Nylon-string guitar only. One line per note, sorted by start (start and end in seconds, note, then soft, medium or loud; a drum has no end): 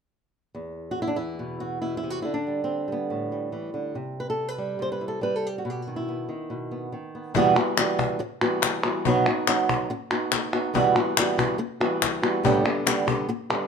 0.55 2.25 E2 medium
0.91 1.01 F#4 medium
1.02 1.08 E4 medium
1.07 1.15 D4 medium
1.16 2.22 E3 soft
1.16 1.60 E4 medium
1.39 1.81 B2 soft
1.60 1.81 F#4 medium
1.82 2.03 B2 soft
1.82 1.96 E4 medium
1.97 2.10 E4 medium
2.03 2.25 C3 soft
2.10 2.21 F#4 medium
2.22 3.52 D3 medium
2.22 2.34 E4 medium
2.34 2.63 D4 medium
2.47 2.87 G3 soft
2.64 2.92 C4 medium
2.88 3.31 G3 soft
2.92 3.49 B3 medium
3.10 3.95 A2 soft
3.32 4.57 G3 soft
3.52 3.73 E3 soft
3.74 3.95 D3 soft
3.95 4.78 C3 medium
4.20 4.29 B4 medium
4.30 4.49 A4 medium
4.49 4.82 B4 medium
4.58 5.20 G3 soft
4.79 5.62 C3 soft
4.79 4.91 C5 medium
4.92 5.08 B4 medium
5.01 5.47 E4 soft
5.08 5.22 A4 medium
5.21 5.62 G3 soft
5.21 5.36 B4 medium
5.36 5.47 A4 medium
5.47 5.57 G4 medium
5.58 5.70 F#4 medium
5.65 6.29 B2 medium
5.70 5.82 G4 medium
5.82 5.96 F#4 medium
5.87 6.27 D#3 soft
5.96 6.92 E4 medium
6.08 6.70 B3 soft
6.29 6.91 D#3 soft
6.50 6.93 B2 soft
6.71 7.14 B3 soft
6.92 7.33 D#3 soft
7.15 7.35 B3 soft
7.34 7.55 E2 medium
7.34 7.56 B2 medium
7.34 7.56 E3 medium
7.34 7.56 G3 medium
7.34 7.55 B3 medium
7.34 7.54 F#4 medium
7.55 7.76 E3 soft
7.55 7.76 G3 soft
7.55 7.77 B3 medium
7.55 7.76 F#4 soft
7.77 8.19 E3 medium
7.77 8.19 G3 medium
7.77 8.19 B3 medium
7.77 8.19 F#4 medium
8.19 muted nylon-string guitar stroke medium
8.41 8.84 E3 soft
8.41 8.84 G3 soft
8.41 8.83 B3 medium
8.41 8.82 F#4 medium
8.84 9.05 E3 soft
8.84 9.05 G3 soft
8.84 9.05 B3 soft
8.84 9.04 F#4 soft
9.06 9.26 B2 medium
9.06 9.26 F#3 medium
9.06 9.26 B3 medium
9.06 9.26 D#4 medium
9.06 9.25 F#4 medium
9.27 9.47 B3 soft
9.27 9.47 D#4 medium
9.27 9.47 F#4 soft
9.47 9.89 F#3 medium
9.47 9.89 B3 medium
9.47 9.90 D#4 medium
9.47 9.90 F#4 medium
9.90 muted nylon-string guitar stroke medium
10.11 10.53 B3 soft
10.11 10.53 D#4 medium
10.11 10.52 F#4 medium
10.53 10.74 B3 soft
10.53 10.74 D#4 soft
10.53 10.74 F#4 medium
10.74 10.95 E2 medium
10.74 10.95 B2 medium
10.74 10.95 E3 medium
10.74 10.95 G3 medium
10.74 10.95 B3 medium
10.74 10.94 F#4 medium
10.96 11.16 E3 soft
10.96 11.17 G3 soft
10.96 11.16 B3 medium
10.96 11.16 F#4 medium
11.17 11.37 E3 medium
11.17 11.38 G3 medium
11.17 11.37 B3 medium
11.17 11.36 F#4 medium
11.37 11.58 E3 soft
11.37 11.58 G3 soft
11.37 11.58 B3 medium
11.37 11.58 F#4 medium
11.58 muted nylon-string guitar stroke medium
11.80 12.23 E3 soft
11.80 12.23 G3 soft
11.80 12.22 B3 soft
11.80 12.21 F#4 medium
12.22 12.44 E3 soft
12.22 12.44 G3 soft
12.22 12.44 B3 medium
12.22 12.43 F#4 medium
12.43 12.64 G2 medium
12.43 12.64 A2 medium
12.43 12.65 D3 medium
12.43 12.64 G3 medium
12.43 12.64 B3 medium
12.43 12.63 G4 medium
12.64 12.85 D3 soft
12.64 12.86 G3 soft
12.64 12.86 B3 medium
12.64 12.85 G4 medium
12.86 13.07 D3 medium
12.86 13.07 G3 medium
12.86 13.07 B3 medium
12.86 13.06 G4 medium
13.07 13.27 D3 soft
13.07 13.28 G3 soft
13.07 13.28 B3 medium
13.07 13.28 G4 medium
13.29 muted nylon-string guitar stroke medium
13.50 13.67 D3 soft
13.50 13.67 G3 soft
13.50 13.67 B3 medium
13.50 13.67 G4 medium